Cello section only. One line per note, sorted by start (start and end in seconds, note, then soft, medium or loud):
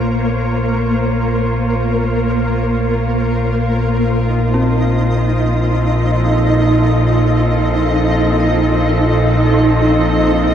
0.00 3.98 A#3 medium
0.00 10.54 F4 medium
0.00 6.96 C5 medium
0.00 3.99 C#5 medium
3.98 10.54 A#2 medium
5.08 10.54 F3 medium
5.70 10.54 A4 medium
6.83 10.54 C4 medium